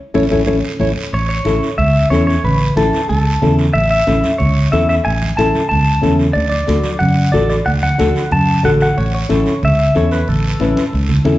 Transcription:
0.14 A1 C#4 E4 A4 C#5, high conga, long guiro
0.31 A1 C#4 E4 A4 C#5, high conga, long guiro
0.46 A1 C#4 E4 A4 C#5, high conga, long guiro
0.80 A1 C#4 E4 A4 C#5, high conga, long guiro
1.13 A1 C#5, high conga, long guiro
1.29 C#5
1.45 A1 C#4 E4 A4, high conga, short guiro
1.63 short guiro
1.78 C#2 E5, low conga, long guiro
1.95 high conga
2.10 E2 C#4 E4 A4 C#5, high conga, short guiro
2.27 C#5, short guiro
2.44 A1 B4, high conga, low conga, long guiro
2.76 A1 C#4 E4 A4, high conga, short guiro
2.93 high conga, short guiro
3.09 C#2 A4, low conga, long guiro
3.26 high conga
3.42 E2 C#4 E4 A4, high conga, low conga, short guiro
3.59 short guiro
3.73 A1 E5, high conga, long guiro
3.90 E5
4.07 A1 C#4 E4 A4, high conga, short guiro
4.24 high conga, short guiro
4.38 C#2 C#5, low conga, long guiro
4.57 high conga
4.72 E2 C#4 E4 A4 E5, high conga, short guiro
4.89 E5, short guiro
5.05 A1 G#5, high conga, long guiro
5.22 high conga
5.37 A1 C#4 E4 A4 A5, high conga, short guiro
5.55 high conga, short guiro
5.69 C#2 A5, low conga, long guiro
5.87 high conga
6.02 E2 C#4 E4 A4, high conga, low conga, short guiro
6.19 short guiro
6.33 D2 D5, high conga, long guiro
6.49 D5, high conga
6.67 D2 D4 F#4 A4, high conga, short guiro
6.84 high conga, short guiro
6.99 F#2 F#5, low conga, long guiro
7.17 high conga
7.32 A1 D4 F#4 A4 D5, high conga, short guiro
7.50 D5, short guiro
7.66 D2 F#5, high conga, low conga, long guiro
7.83 F#5, high conga
7.98 D2 D4 F#4 A4, high conga, short guiro
8.16 high conga, short guiro
8.31 F#2 A5, low conga, long guiro
8.48 high conga
8.63 A1 D4 F#4 A4 F#5, high conga, low conga, short guiro
8.81 F#5, short guiro
8.98 A1 C#5, high conga, long guiro
9.15 C#5
9.29 A1 C#4 E4 A4, high conga, short guiro
9.46 high conga, short guiro
9.63 C#2 E5, low conga, long guiro
9.79 high conga
9.95 E2 C#4 E4 A4 C#5, high conga, short guiro
10.11 B4, short guiro
10.28 A1 A4, high conga, low conga, long guiro
10.60 A1 C#4 E4 B4, high conga, short guiro
10.77 high conga, short guiro
10.93 C#2, long guiro
11.09 low conga
11.25 E2 C#4 E4 A4, low conga, short guiro

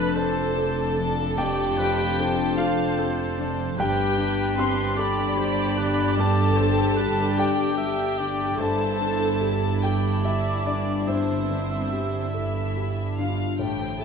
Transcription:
Already playing: F1 F2 F3 A3 D4 F4 A4 B4 D5 B5
0.14 A4 C5 D5 A5
0.56 A3 A4
0.97 F3 D4
1.37 F2 G4 D5 G5
1.78 F3 A3 B4
2.18 D4 A4 C5
2.58 F4 A4 D5 F5
2.99 A3 A4
3.38 F3 D4
3.78 G1 G2 D4 G4 B4 G5
4.18 D3 D4
4.58 C4 D4 G4 C6
4.97 A4 D5 B5
5.36 G3 G4 C5
5.78 D3 D4 B4
6.16 G2 A4 D5 A5
6.57 D3 G3 C5
6.96 D4 G4 B4
7.38 G4 A4 D5 G5
7.78 G3 G4 E5
8.18 D3 D4 D5
8.59 G1 G2 D4 E4 A4 C5 A5
9.01 D3 D4
9.41 G4
9.83 G4 A4 D5 G5
10.24 G3 E4 G4 E5
10.66 D3 D4 D5
11.08 G2 C4 C5 E5
11.50 D3 G3
11.92 G4
12.34 E4 A4 D5 E5
12.76 G3 G4
13.19 D3 D4 F4 F5
13.59 A1 A2 A3 E4 G4 G5
13.81 C4
14.00 A3 C4 E4 A4 A5

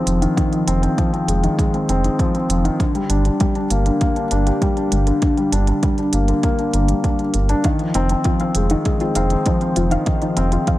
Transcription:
Already playing: D#3 F3 G#3 C4 D#4
0.07 F1 F3, closed hi-hat
0.22 D#3, closed hi-hat
0.37 D#3, kick, closed hi-hat
0.52 F3, closed hi-hat
0.68 F1 C4, closed hi-hat
0.83 C4, closed hi-hat
0.98 F3, kick, closed hi-hat
1.13 C4, closed hi-hat
1.28 F1 G#3, closed hi-hat
1.44 D#3, closed hi-hat
1.59 G#3, kick, closed hi-hat
1.74 C4, closed hi-hat
1.89 F1 C4, closed hi-hat
2.04 D#4, closed hi-hat
2.19 F3, kick, closed hi-hat
2.35 C4, closed hi-hat
2.49 F1 F3, closed hi-hat
2.65 D#3, closed hi-hat
2.79 D3, kick, closed hi-hat
2.95 G3, closed hi-hat
3.10 G1 D4, closed hi-hat
3.25 D4, closed hi-hat
3.40 G3, kick, closed hi-hat
3.55 D4, closed hi-hat
3.70 G1 A#3, closed hi-hat
3.86 D3, closed hi-hat
4.01 A#3, kick, closed hi-hat
4.16 D4, closed hi-hat
4.31 G1 D4, closed hi-hat
4.47 G4, closed hi-hat
4.62 G3, kick, closed hi-hat
4.77 D4, closed hi-hat
4.92 G1 G3, closed hi-hat
5.07 D3, closed hi-hat
5.22 D3, kick, closed hi-hat
5.37 G3, closed hi-hat
5.52 G1 D4, closed hi-hat
5.67 D4, closed hi-hat
5.83 G3, kick, closed hi-hat
5.98 D4, closed hi-hat
6.13 G1 A#3, closed hi-hat
6.28 D3, closed hi-hat
6.43 A#3, kick, closed hi-hat
6.59 D4, closed hi-hat
6.74 G1 A#4, closed hi-hat
6.88 G3, closed hi-hat
7.04 D4, kick, closed hi-hat
7.19 D3, closed hi-hat
7.34 G1 D3, closed hi-hat
7.49 D4, closed hi-hat
7.64 D#3 F5, kick, closed hi-hat
7.79 F3, closed hi-hat
7.94 F1 C4 D#4, closed hi-hat
8.09 C4, closed hi-hat
8.24 F3 F4, kick, closed hi-hat
8.40 C4 F5, closed hi-hat
8.55 F1 G#3, closed hi-hat
8.70 D#3 D#4, closed hi-hat
8.85 G#3, kick, closed hi-hat
9.00 C4 F4, closed hi-hat
9.15 F1 C4 F5, closed hi-hat
9.30 D#4, closed hi-hat
9.46 F3 D#4, kick, closed hi-hat
9.61 C4, closed hi-hat
9.76 F1 F3 F4, closed hi-hat
9.91 D#3 F5, closed hi-hat
10.06 D#3, kick, closed hi-hat
10.21 F3 D#4, closed hi-hat
10.37 F1 C4, closed hi-hat
10.52 C4 F4, closed hi-hat
10.67 F3 F5, kick, closed hi-hat

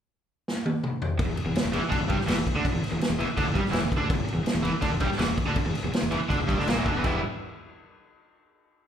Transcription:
0.48 snare
0.66 high tom
0.84 mid tom
1.02 floor tom
1.19 muted overdriven electric guitar stroke, muted fingered electric bass stroke, kick, crash
1.26 E1 E2
1.37 muted overdriven electric guitar stroke, muted fingered electric bass stroke, crash
1.46 E1 E2
1.55 muted fingered electric bass stroke, muted overdriven electric guitar stroke, snare, crash
1.65 E1 E2
1.72 E1 E2 E3, crash
1.83 muted overdriven electric guitar stroke, muted fingered electric bass stroke
1.90 D2 D3 D4, kick, crash
2.00 E1 E2
2.08 G1 G2 G3, kick, crash
2.19 muted overdriven electric guitar stroke, muted fingered electric bass stroke, snare
2.26 E1 E2 E3, snare, crash
2.37 E1 E2
2.46 muted overdriven electric guitar stroke, muted fingered electric bass stroke, kick, crash
2.55 D2 D3 D4
2.64 muted overdriven electric guitar stroke, muted fingered electric bass stroke, kick, crash
2.73 E1 E2
2.82 muted overdriven electric guitar stroke, muted fingered electric bass stroke, snare, crash
2.91 E1 E2
2.99 muted overdriven electric guitar stroke, muted fingered electric bass stroke, snare, crash
3.09 E1 E2
3.18 E1 E2 E3, crash
3.28 muted fingered electric bass stroke, muted overdriven electric guitar stroke
3.37 D2 D3 D4, kick, crash
3.44 E1 E2
3.54 G1 G2 G3, kick, crash
3.62 muted overdriven electric guitar stroke, muted fingered electric bass stroke, snare
3.71 E1 E2 E3, snare, crash
3.81 E1 E2
3.89 muted overdriven electric guitar stroke, muted fingered electric bass stroke, kick, crash
3.97 D2 D3 D4
4.07 muted overdriven electric guitar stroke, muted fingered electric bass stroke, kick, crash
4.15 E1 E2
4.26 muted overdriven electric guitar stroke, muted fingered electric bass stroke, crash
4.34 E1 E2
4.44 muted overdriven electric guitar stroke, muted fingered electric bass stroke, snare, crash
4.53 E1 E2
4.61 E1 E2 E3, crash
4.73 muted overdriven electric guitar stroke, muted fingered electric bass stroke
4.81 D2 D3 D4, kick, crash
4.90 E1 E2
5.00 G1 G2 G3, kick, crash
5.09 muted overdriven electric guitar stroke, muted fingered electric bass stroke, snare
5.18 E1 E2 E3, snare, crash
5.27 E1 E2
5.37 muted overdriven electric guitar stroke, muted fingered electric bass stroke, kick, crash
5.46 D2 D3 D4
5.56 muted fingered electric bass stroke, muted overdriven electric guitar stroke, kick, crash
5.66 E1 E2
5.74 muted overdriven electric guitar stroke, muted fingered electric bass stroke, snare, crash
5.84 E1 E2
5.93 muted overdriven electric guitar stroke, muted fingered electric bass stroke, snare, crash
6.02 E1 E2
6.10 E1 E2 E3, crash
6.20 muted overdriven electric guitar stroke, muted fingered electric bass stroke
6.29 D2 D3 D4, kick, crash
6.39 E1 E2
6.46 G1 G2 G3, kick, crash
6.57 D2 D3 D4, snare
6.67 A#1 A#2 A#3, snare, crash
6.77 E1 E2 E3
6.85 D2 D3 D4, kick, crash
6.95 E1 E2 E3
7.04 E1 E3 G3 B3 E4, kick, crash

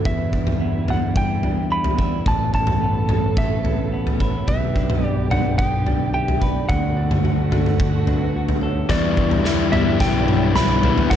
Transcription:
0.05 E2 D3 G3 E4 B4 E5, kick, floor tom
0.33 D4, kick
0.47 floor tom, mid tom
0.60 B3 E5
0.88 D4 F#5, floor tom, mid tom
1.15 G3 G5, kick
1.43 D4, floor tom
1.70 B3 E5 B5
1.84 floor tom
1.98 E4 D5, kick
2.26 A1 A2 C#3 B3 A4 A5, kick, floor tom
2.53 C#4 A5, kick
2.67 floor tom, mid tom
2.81 B3
3.09 C#4 A4, floor tom, mid tom
3.37 A3 E5, kick
3.63 C#4 B4, floor tom
3.92 B3
4.07 floor tom
4.20 E4 C#5, kick
4.48 B1 D3 B3 G4 B4 E5, kick, floor tom
4.76 D4, kick
4.90 floor tom, mid tom
5.03 G4 D5
5.31 D4 F#5, floor tom, mid tom
5.58 B3 G5, kick
5.87 D4, floor tom
6.14 G4 E5 G5
6.28 floor tom
6.41 B4 D5, kick
6.69 D2 D3 A3 F#4 F#5, kick, floor tom
6.97 D4
7.11 floor tom, mid tom
7.24 F#4, mid tom
7.51 D4 A4, floor tom, mid tom
7.66 mid tom
7.80 D3, kick
8.07 D4 B4, floor tom
8.36 F#4
8.48 floor tom
8.61 A4 C#5
8.89 E2 E3 G3 B3 D4 E4 G4 D5 E5 C#6, kick, snare, floor tom
9.17 G3, kick
9.31 floor tom
9.44 E2 D3 E3 G3 B3 E4, snare
9.72 E3 G3 B3 E4 D5 E5, floor tom, mid tom
10.00 B1 E3 G3 B3 E4 G5, kick, snare, floor tom
10.27 G3 C#5, mid tom
10.55 D3 E3 G3 B3 E4 B5, snare, floor tom
10.83 E3 G3 B3 E4 B4, floor tom
10.98 floor tom
11.10 A1 A2 E3 A3 C#4 E4 B4 F#5 A5, kick, snare, floor tom

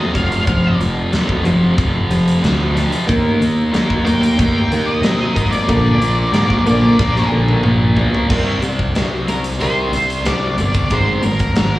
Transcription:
Already playing: F2 C3 F3 D#5
0.14 F1 F2 C3 F3 F5, kick, closed hi-hat
0.32 closed hi-hat
0.47 F1 F2 C3 F3, kick, closed hi-hat
0.79 F1 F2 C3, closed hi-hat
1.11 D#2 F2 C3 F3, snare, closed hi-hat
1.29 kick
1.45 F1 F2 C3 F3, closed hi-hat
1.76 F1 F2 C3 F3, kick, closed hi-hat
2.09 F1 F2 C3 F3, closed hi-hat
2.28 closed hi-hat
2.42 D2 F2 C3 F3, snare, closed hi-hat
2.74 F2 C3 F3, snare, closed hi-hat
2.92 closed hi-hat
3.07 D#2 D#3 A#3 D#4, kick, closed hi-hat
3.40 D#2 D#3 A#3, closed hi-hat
3.73 D#2 D#3 A#3 D#4, snare, closed hi-hat
3.90 kick
4.05 D#2 D#3 A#3 D#4 G5, closed hi-hat
4.22 G5, closed hi-hat
4.39 D#2 D#3 A#3 D#4, kick, closed hi-hat
4.71 D#2 D#3 A#3 D#4, closed hi-hat
4.86 D#5
5.01 C3 D#3 A#3 D#4, snare, closed hi-hat
5.35 G#1 D#3 A#3 D#4, kick, closed hi-hat
5.51 D5, closed hi-hat
5.68 A#1 A#2 D3 F3 A#3, kick, closed hi-hat
6.00 A#1 A#2 D3, closed hi-hat
6.33 G#2 A#2 D3 F3 A#3, snare, closed hi-hat
6.50 kick
6.65 A#1 A#2 D3 F3 A#3 D5, closed hi-hat
6.99 A#1 A#2 F3 A#3, kick, snare
7.16 snare
7.30 A#1 A#2 D3 A#3
7.48 high tom
7.63 A#1 A#2 D3 F3 A#3, mid tom
7.96 A#2 D3 F3 A#3, floor tom
8.14 floor tom
8.30 C2 C3 D#3 G3 C4, kick, crash
8.62 C2 C3 D#3 G3, closed hi-hat
8.79 kick
8.95 C2 C3 D#3 G3, snare, closed hi-hat
9.28 C3 D#3 G3 A#4, closed hi-hat
9.44 closed hi-hat
9.60 C2 C3 D#3 G3 C4 C5, closed hi-hat
9.92 C2 C3 D#3 G3, closed hi-hat
10.10 closed hi-hat
10.25 C2 C3 D#3 G3 D5, snare, closed hi-hat
10.58 G1 C3 D#3 G3, closed hi-hat
10.74 kick, closed hi-hat
10.90 G#1 G#2 D#3 G#3 C4 D#4 C5, kick, closed hi-hat
11.23 G#1 G#2 D#3 G#3 C4 A#4, closed hi-hat
11.39 kick, closed hi-hat
11.55 G#1 G#2 D#3 G#3 C4, snare, closed hi-hat

